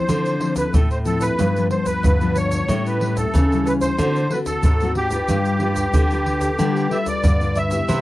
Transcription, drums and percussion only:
0.09 pandeiro medium
0.09 shaker medium
0.09 surdo soft
0.26 pandeiro soft
0.26 shaker soft
0.41 pandeiro medium
0.56 pandeiro medium
0.56 shaker medium
0.56 surdo soft
0.74 pandeiro medium
0.74 shaker medium
0.74 surdo medium
0.91 pandeiro soft
0.91 shaker soft
1.05 pandeiro soft
1.05 shaker medium
1.21 pandeiro medium
1.21 shaker medium
1.21 surdo soft
1.39 pandeiro medium
1.39 shaker medium
1.39 surdo soft
1.56 pandeiro soft
1.56 shaker soft
1.71 pandeiro medium
1.86 pandeiro medium
1.86 shaker medium
1.86 surdo soft
2.04 pandeiro medium
2.04 shaker medium
2.04 surdo medium
2.21 pandeiro soft
2.21 shaker soft
2.36 pandeiro medium
2.36 shaker medium
2.51 pandeiro medium
2.51 shaker medium
2.51 surdo soft
2.69 pandeiro medium
2.69 shaker medium
2.69 surdo medium
2.86 pandeiro soft
2.86 shaker soft
3.01 pandeiro medium
3.17 pandeiro medium
3.17 shaker medium
3.17 surdo soft
3.35 pandeiro medium
3.35 shaker medium
3.35 surdo medium
3.52 pandeiro soft
3.52 shaker soft
3.67 pandeiro soft
3.67 shaker medium
3.81 pandeiro medium
3.81 shaker medium
3.81 surdo soft
3.99 pandeiro medium
3.99 shaker medium
3.99 surdo medium
4.16 pandeiro soft
4.16 shaker soft
4.31 pandeiro medium
4.46 pandeiro medium
4.46 shaker medium
4.46 surdo soft
4.63 pandeiro medium
4.63 shaker medium
4.63 surdo medium
4.80 pandeiro soft
4.80 shaker soft
4.95 pandeiro medium
5.11 pandeiro medium
5.11 shaker medium
5.11 surdo soft
5.28 pandeiro medium
5.28 shaker medium
5.28 surdo medium
5.45 pandeiro soft
5.45 shaker soft
5.60 pandeiro medium
5.76 pandeiro medium
5.76 shaker medium
5.76 surdo soft
5.94 pandeiro medium
5.94 shaker medium
5.94 surdo medium
6.11 pandeiro soft
6.11 shaker soft
6.26 pandeiro medium
6.26 surdo soft
6.41 pandeiro medium
6.41 shaker medium
6.41 surdo soft
6.59 pandeiro medium
6.59 shaker medium
6.59 surdo soft
6.76 pandeiro soft
6.76 shaker soft
6.91 pandeiro medium
7.06 pandeiro medium
7.06 shaker medium
7.06 surdo soft
7.24 pandeiro medium
7.24 shaker medium
7.24 surdo medium
7.41 pandeiro soft
7.41 shaker soft
7.55 pandeiro medium
7.55 shaker medium
7.71 pandeiro medium
7.71 shaker medium
7.71 surdo soft
7.89 pandeiro medium
7.89 shaker medium
7.89 surdo medium

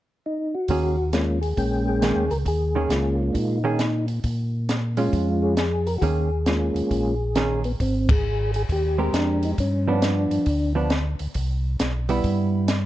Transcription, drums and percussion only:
0.68 kick soft
0.68 open hi-hat soft
1.13 snare soft
1.13 closed hi-hat soft
1.43 open hi-hat soft
1.57 kick soft
1.57 open hi-hat soft
2.02 snare soft
2.02 closed hi-hat soft
2.31 open hi-hat soft
2.46 kick soft
2.46 open hi-hat soft
2.90 snare soft
2.90 closed hi-hat soft
3.35 kick soft
3.35 open hi-hat soft
3.79 snare soft
3.79 closed hi-hat soft
4.08 open hi-hat soft
4.24 kick soft
4.24 open hi-hat soft
4.69 snare soft
4.69 closed hi-hat soft
4.97 open hi-hat soft
5.13 kick soft
5.13 open hi-hat soft
5.57 snare soft
5.57 closed hi-hat soft
5.87 open hi-hat soft
6.02 kick soft
6.02 open hi-hat soft
6.46 snare soft
6.46 closed hi-hat soft
6.76 open hi-hat soft
6.91 kick soft
6.91 open hi-hat soft
7.35 snare medium
7.35 closed hi-hat soft
7.64 open hi-hat soft
7.80 kick soft
7.80 open hi-hat soft
8.09 kick medium
8.09 ride medium
8.54 open hi-hat soft
8.69 kick soft
8.69 open hi-hat soft
9.14 snare medium
9.14 closed hi-hat soft
9.43 open hi-hat soft
9.58 kick soft
9.58 open hi-hat soft
10.02 snare medium
10.02 closed hi-hat soft
10.31 open hi-hat soft
10.46 kick soft
10.46 open hi-hat soft
10.90 snare medium
10.90 closed hi-hat soft
11.19 open hi-hat soft
11.34 kick soft
11.34 open hi-hat soft
11.80 snare medium
11.80 closed hi-hat soft
12.09 open hi-hat soft
12.24 kick soft
12.24 open hi-hat soft
12.68 snare medium
12.68 closed hi-hat soft

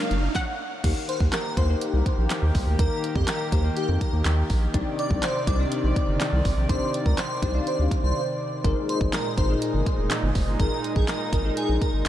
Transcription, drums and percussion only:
0.11 closed hi-hat medium
0.35 kick loud
0.35 snare medium
0.84 kick loud
0.84 closed hi-hat medium
0.84 crash loud
1.09 closed hi-hat medium
1.20 kick loud
1.33 snare medium
1.33 clap loud
1.33 closed hi-hat medium
1.57 kick loud
1.57 closed hi-hat medium
1.81 closed hi-hat medium
2.06 kick loud
2.06 closed hi-hat medium
2.30 snare medium
2.30 clap loud
2.30 closed hi-hat medium
2.55 kick medium
2.55 open hi-hat medium
2.79 kick loud
2.79 closed hi-hat medium
3.04 closed hi-hat medium
3.16 kick loud
3.28 snare medium
3.28 clap loud
3.28 closed hi-hat medium
3.52 kick loud
3.52 closed hi-hat medium
3.77 closed hi-hat medium
4.01 kick loud
4.01 closed hi-hat medium
4.25 snare medium
4.25 clap loud
4.25 closed hi-hat medium
4.50 kick medium
4.50 open hi-hat medium
4.74 kick loud
4.74 closed hi-hat medium
4.99 closed hi-hat medium
5.11 kick loud
5.23 snare medium
5.23 clap loud
5.23 closed hi-hat medium
5.47 kick loud
5.47 closed hi-hat medium
5.72 closed hi-hat medium
5.96 kick loud
5.96 closed hi-hat medium
6.20 snare medium
6.20 clap loud
6.20 closed hi-hat medium
6.45 kick medium
6.45 open hi-hat medium
6.69 kick loud
6.69 closed hi-hat medium
6.94 closed hi-hat medium
7.06 kick loud
7.18 snare medium
7.18 clap loud
7.18 closed hi-hat medium
7.42 kick loud
7.42 closed hi-hat medium
7.67 closed hi-hat medium
7.91 kick loud
7.91 closed hi-hat medium
8.64 kick loud
8.64 closed hi-hat medium
8.89 closed hi-hat medium
9.01 kick loud
9.13 snare medium
9.13 clap loud
9.13 closed hi-hat medium
9.38 kick loud
9.38 closed hi-hat medium
9.62 closed hi-hat loud
9.86 kick loud
9.86 closed hi-hat medium
10.10 snare medium
10.10 clap loud
10.10 closed hi-hat medium
10.35 kick medium
10.35 open hi-hat medium
10.60 kick loud
10.60 closed hi-hat medium
10.84 closed hi-hat medium
10.96 kick loud
11.08 snare medium
11.08 clap loud
11.08 closed hi-hat loud
11.33 kick loud
11.33 closed hi-hat medium
11.57 closed hi-hat loud
11.82 kick loud
11.82 closed hi-hat medium

